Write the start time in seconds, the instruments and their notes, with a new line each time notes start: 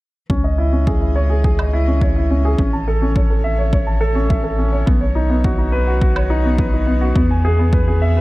0.30 analog synth bass C#2, string quartet E3, upright piano C#4, kick
0.43 string quartet D#5, upright piano D#5
0.58 upright piano E4
0.66 string quartet G#4
0.73 upright piano C#4, string quartet C#5
0.87 upright piano G#4, kick
1.01 upright piano E4
1.16 upright piano C#5
1.30 upright piano G#4
1.44 upright piano G#4, kick
1.59 upright piano D#5, low woodblock
1.73 upright piano E4
1.87 upright piano C#4
2.01 upright piano C#5, kick
2.16 upright piano E4
2.31 upright piano C#4
2.45 upright piano G#4
2.58 analog synth bass A1, upright piano C#4, kick
2.70 string quartet C#4, upright piano A5
2.88 upright piano A4
3.02 upright piano C#4, string quartet A4
3.16 upright piano C#5, kick
3.30 upright piano A4
3.44 upright piano E5
3.58 upright piano C#5
3.73 upright piano C#5, kick
3.87 upright piano A5
4.01 upright piano A4
4.15 upright piano C#4
4.30 upright piano E5, kick
4.44 upright piano A4
4.58 upright piano C#4
4.72 upright piano C#5
4.86 analog synth bass B1, string quartet D#3, upright piano B3, kick
5.01 upright piano C#5
5.13 string quartet B3, upright piano D#4
5.29 upright piano B3
5.39 string quartet F#4
5.44 upright piano F#4, kick
5.58 upright piano D#4
5.72 upright piano B4
5.87 upright piano F#4
6.01 upright piano F#4, kick
6.16 upright piano C#5, low woodblock
6.30 upright piano D#4
6.45 upright piano B3
6.58 upright piano B4, kick
6.73 upright piano D#4
6.87 upright piano B3
7.01 upright piano F#4
7.16 analog synth bass E2, string quartet E3, upright piano B3, kick
7.31 upright piano G#5
7.45 upright piano G#4
7.59 upright piano B3
7.68 string quartet G#4
7.73 upright piano B4, kick
7.88 upright piano G#4
7.97 string quartet E5
8.02 upright piano E5
8.17 upright piano B4